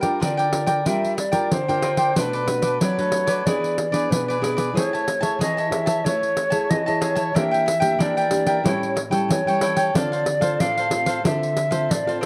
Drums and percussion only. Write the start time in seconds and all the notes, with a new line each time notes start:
0.03 pandeiro
0.22 pandeiro
0.39 pandeiro
0.53 pandeiro
0.67 pandeiro
0.86 pandeiro
1.04 pandeiro
1.18 pandeiro
1.33 pandeiro
1.51 pandeiro
1.69 pandeiro
1.82 pandeiro
1.97 pandeiro
2.16 pandeiro
2.33 pandeiro
2.48 pandeiro
2.62 pandeiro
2.81 pandeiro
2.99 pandeiro
3.12 pandeiro
3.27 pandeiro
3.47 pandeiro
3.64 pandeiro
3.78 pandeiro
3.94 pandeiro
4.12 pandeiro
4.30 pandeiro
4.44 pandeiro
4.58 pandeiro
4.77 pandeiro
4.95 pandeiro
5.08 pandeiro
5.23 pandeiro
5.41 pandeiro
5.58 pandeiro
5.72 pandeiro
5.87 pandeiro
6.06 pandeiro
6.23 pandeiro
6.37 pandeiro
6.52 pandeiro
6.71 pandeiro
6.88 pandeiro
7.02 pandeiro
7.16 pandeiro
7.36 pandeiro
7.54 pandeiro
7.68 pandeiro
7.82 pandeiro
8.00 pandeiro
8.18 pandeiro
8.31 pandeiro
8.47 pandeiro
8.66 pandeiro
8.83 pandeiro
8.97 pandeiro
9.12 pandeiro
9.30 pandeiro
9.48 pandeiro
9.61 pandeiro
9.77 pandeiro
9.95 pandeiro
10.13 pandeiro
10.26 pandeiro
10.42 pandeiro
10.60 pandeiro
10.77 pandeiro
10.91 pandeiro
11.06 pandeiro
11.25 pandeiro
11.43 pandeiro
11.57 pandeiro
11.72 pandeiro
11.91 pandeiro
12.09 pandeiro